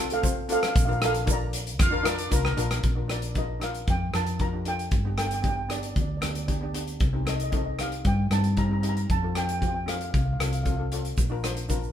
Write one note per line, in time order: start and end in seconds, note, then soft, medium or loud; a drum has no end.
0.00 0.72 C2 medium
0.00 0.13 C4 medium
0.00 0.13 F4 medium
0.00 0.14 A4 medium
0.00 0.14 A5 loud
0.10 0.48 A4 medium
0.10 0.51 F5 medium
0.10 closed hi-hat medium
0.10 shaker soft
0.22 0.39 C4 medium
0.22 0.39 F4 medium
0.22 0.40 C5 medium
0.22 kick medium
0.22 closed hi-hat medium
0.22 shaker loud
0.49 0.73 C4 medium
0.49 0.73 F4 medium
0.49 0.73 A4 medium
0.49 0.58 A4 medium
0.49 0.58 F5 medium
0.49 closed hi-hat medium
0.49 shaker medium
0.60 0.66 F5 medium
0.60 cross-stick medium
0.60 closed hi-hat medium
0.68 0.73 F5 medium
0.75 1.79 A#1 medium
0.75 0.81 F5 medium
0.75 kick loud
0.75 closed hi-hat medium
0.75 shaker medium
0.85 0.96 D4 medium
0.85 0.96 F4 medium
0.85 0.97 A#4 medium
0.85 0.90 F5 medium
0.91 0.97 F5 medium
0.91 shaker soft
1.01 1.17 D4 medium
1.01 1.17 F4 medium
1.01 1.27 A4 medium
1.01 1.18 A#4 medium
1.01 cross-stick medium
1.01 closed hi-hat medium
1.01 shaker medium
1.06 1.30 F5 medium
1.14 closed hi-hat medium
1.26 1.66 D4 medium
1.26 1.67 F4 medium
1.26 1.67 A#4 medium
1.26 kick medium
1.26 closed hi-hat medium
1.26 shaker loud
1.31 2.56 D5 medium
1.31 2.56 A#5 medium
1.53 closed hi-hat medium
1.53 shaker medium
1.67 closed hi-hat medium
1.67 shaker soft
1.79 2.28 F2 loud
1.79 2.04 F4 medium
1.79 2.04 F5 loud
1.79 kick loud
1.79 cross-stick medium
1.79 closed hi-hat medium
1.79 shaker medium
1.91 2.00 D4 medium
1.91 2.00 F4 medium
1.91 2.00 A#4 loud
2.03 2.20 D4 medium
2.03 2.32 D4 medium
2.03 2.20 F4 medium
2.03 2.21 A#4 loud
2.03 2.32 D5 loud
2.03 cross-stick medium
2.03 closed hi-hat medium
2.03 shaker medium
2.18 closed hi-hat medium
2.18 shaker soft
2.30 2.55 C2 medium
2.30 2.84 A#3 medium
2.30 2.47 D4 medium
2.30 2.47 F4 medium
2.30 2.84 A#4 medium
2.30 2.48 A#4 medium
2.30 kick medium
2.30 closed hi-hat medium
2.30 shaker medium
2.45 cross-stick medium
2.57 2.81 A#1 medium
2.57 2.81 D4 medium
2.57 2.81 F4 medium
2.57 2.82 A#4 medium
2.57 closed hi-hat medium
2.57 shaker medium
2.71 cross-stick medium
2.71 closed hi-hat medium
2.71 shaker soft
2.83 3.84 A#1 medium
2.83 kick medium
2.83 closed hi-hat medium
2.95 3.04 D4 medium
2.95 3.05 F4 medium
2.95 3.05 A#4 medium
3.08 3.25 D4 medium
3.08 3.25 F4 medium
3.08 3.26 A#4 medium
3.08 3.37 D5 medium
3.08 cross-stick medium
3.08 closed hi-hat medium
3.22 closed hi-hat medium
3.35 3.51 D4 medium
3.35 3.52 F4 medium
3.35 3.52 A#4 medium
3.35 3.64 D#5 medium
3.35 kick medium
3.35 closed hi-hat soft
3.60 3.92 D4 medium
3.60 3.93 F4 medium
3.60 3.94 A#4 medium
3.60 3.75 F5 medium
3.60 cross-stick medium
3.60 closed hi-hat medium
3.74 closed hi-hat soft
3.87 4.12 F2 medium
3.87 4.16 G5 medium
3.87 kick medium
3.87 closed hi-hat soft
4.13 4.88 F2 medium
4.13 4.30 D4 medium
4.13 4.30 F4 medium
4.13 4.30 A#4 medium
4.13 4.42 A5 medium
4.13 cross-stick medium
4.13 closed hi-hat medium
4.27 closed hi-hat medium
4.39 4.48 D4 medium
4.39 4.48 F4 medium
4.39 4.49 A#4 medium
4.39 4.68 A#5 medium
4.39 kick medium
4.39 closed hi-hat soft
4.53 4.61 D4 medium
4.53 4.62 F4 soft
4.53 4.62 G4 medium
4.65 4.90 D4 medium
4.65 4.90 F4 medium
4.65 4.90 A4 medium
4.65 5.17 G5 medium
4.65 closed hi-hat medium
4.79 closed hi-hat soft
4.91 5.93 G1 medium
4.91 kick loud
4.91 closed hi-hat soft
5.05 5.13 B3 medium
5.05 5.13 D4 medium
5.05 5.14 G4 medium
5.17 5.34 B3 medium
5.17 5.34 D4 medium
5.17 5.35 A4 medium
5.17 5.26 G5 medium
5.17 cross-stick medium
5.17 closed hi-hat medium
5.27 5.32 G5 medium
5.27 closed hi-hat medium
5.33 5.41 G5 medium
5.42 5.59 B3 medium
5.42 5.60 D4 medium
5.42 5.60 G4 medium
5.42 5.47 G5 medium
5.42 kick medium
5.42 closed hi-hat medium
5.49 5.55 G5 medium
5.56 5.64 G5 medium
5.69 6.01 B3 medium
5.69 6.01 D4 medium
5.69 6.02 G4 medium
5.69 5.78 D5 medium
5.69 cross-stick medium
5.69 closed hi-hat medium
5.79 5.85 D5 soft
5.83 5.93 D5 soft
5.83 closed hi-hat medium
5.94 6.21 D2 medium
5.94 6.00 D5 soft
5.94 kick medium
5.94 closed hi-hat medium
6.02 6.08 D5 soft
6.09 6.16 D5 soft
6.17 6.23 D5 soft
6.21 6.97 D2 medium
6.21 6.38 B3 medium
6.21 6.38 D4 medium
6.21 6.39 G4 medium
6.21 cross-stick medium
6.21 closed hi-hat medium
6.25 6.31 D5 soft
6.33 6.37 D5 soft
6.33 closed hi-hat medium
6.39 6.45 D5 soft
6.48 6.56 B3 medium
6.48 6.56 D4 medium
6.48 6.57 G4 medium
6.48 6.52 D5 soft
6.48 kick medium
6.48 closed hi-hat medium
6.53 6.60 D5 soft
6.61 6.69 B3 medium
6.61 6.70 D4 medium
6.61 6.70 G4 medium
6.61 6.69 D5 soft
6.74 6.98 B3 medium
6.74 6.99 D4 medium
6.74 6.99 G4 medium
6.74 closed hi-hat medium
6.87 closed hi-hat soft
7.00 8.01 C2 medium
7.00 kick loud
7.00 closed hi-hat medium
7.13 7.21 C4 medium
7.13 7.22 D#4 medium
7.13 7.22 G4 medium
7.25 7.42 C4 medium
7.25 7.43 D#4 medium
7.25 7.43 A4 medium
7.25 7.35 D#5 medium
7.25 cross-stick medium
7.25 closed hi-hat medium
7.36 7.42 D#5 medium
7.36 closed hi-hat medium
7.43 7.49 D#5 medium
7.51 7.68 C4 medium
7.51 7.69 D#4 medium
7.51 7.69 A4 medium
7.51 7.56 D#5 medium
7.51 kick medium
7.51 closed hi-hat medium
7.58 7.65 D#5 medium
7.66 7.73 D#5 medium
7.79 8.11 C4 medium
7.79 8.11 D#4 medium
7.79 8.12 G4 medium
7.79 8.07 F5 medium
7.79 cross-stick medium
7.79 closed hi-hat medium
7.92 closed hi-hat soft
8.05 8.29 G2 medium
8.05 8.33 G5 medium
8.05 kick medium
8.05 closed hi-hat medium
8.30 9.05 G2 medium
8.30 8.47 C4 medium
8.30 8.48 D#4 medium
8.30 8.48 G4 medium
8.30 8.59 A5 medium
8.30 cross-stick medium
8.30 closed hi-hat medium
8.44 closed hi-hat soft
8.57 8.65 C4 medium
8.57 8.66 D#4 medium
8.57 8.66 G4 medium
8.57 8.64 A#5 medium
8.57 kick medium
8.57 closed hi-hat medium
8.69 8.78 C4 medium
8.69 8.78 D#4 soft
8.69 8.79 G4 medium
8.69 8.79 A#5 medium
8.80 9.06 C4 medium
8.80 9.07 D#4 medium
8.80 9.07 G4 medium
8.80 8.88 A#5 medium
8.80 closed hi-hat medium
8.89 8.95 A#5 medium
8.96 9.03 A#5 medium
8.96 closed hi-hat soft
9.10 10.10 F2 medium
9.10 9.37 A5 medium
9.10 kick medium
9.10 closed hi-hat medium
9.22 9.30 C4 medium
9.22 9.31 F4 medium
9.22 9.31 A4 medium
9.35 9.51 C4 medium
9.35 9.52 F4 medium
9.35 9.52 A4 medium
9.35 9.43 G5 medium
9.35 cross-stick medium
9.35 closed hi-hat medium
9.44 9.51 G5 medium
9.49 9.58 G5 medium
9.49 closed hi-hat medium
9.59 9.77 C4 medium
9.59 9.77 F4 medium
9.59 9.78 G4 medium
9.59 9.66 G5 medium
9.59 kick medium
9.59 closed hi-hat medium
9.67 9.73 G5 medium
9.74 9.81 G5 medium
9.86 10.18 C4 medium
9.86 10.19 F4 medium
9.86 10.19 A4 medium
9.86 9.95 F5 medium
9.86 cross-stick medium
9.86 closed hi-hat medium
9.97 10.03 F5 soft
9.97 closed hi-hat soft
10.05 10.10 F5 soft
10.14 10.38 C2 medium
10.14 kick medium
10.14 closed hi-hat medium
10.19 10.24 F5 soft
10.25 10.32 F5 soft
10.33 10.39 F5 soft
10.40 11.14 C2 medium
10.40 10.55 C4 medium
10.40 10.56 F4 medium
10.40 10.56 A4 medium
10.40 10.47 F5 soft
10.40 cross-stick medium
10.40 closed hi-hat medium
10.49 10.53 F5 soft
10.49 closed hi-hat soft
10.55 10.62 F5 soft
10.63 10.73 C4 medium
10.63 10.74 F4 medium
10.63 10.74 A4 medium
10.63 10.69 F5 medium
10.63 kick medium
10.63 closed hi-hat medium
10.70 10.75 F5 soft
10.77 10.86 C4 medium
10.77 10.86 F4 soft
10.77 10.87 A4 medium
10.77 10.84 F5 soft
10.92 11.15 C4 medium
10.92 11.16 F4 medium
10.92 11.16 A4 medium
10.92 closed hi-hat medium
11.05 closed hi-hat medium
11.17 11.92 A#1 medium
11.17 kick medium
11.17 closed hi-hat medium
11.17 shaker medium
11.30 11.38 D4 medium
11.30 11.39 F4 medium
11.30 11.39 A#4 medium
11.43 11.59 D4 medium
11.43 11.60 F4 medium
11.43 11.60 C5 medium
11.43 cross-stick medium
11.43 closed hi-hat medium
11.43 shaker medium
11.56 closed hi-hat medium
11.56 shaker soft
11.69 11.85 D4 medium
11.69 11.86 F4 medium
11.69 11.86 A#4 medium
11.69 kick medium
11.69 closed hi-hat medium
11.69 shaker medium
11.83 shaker soft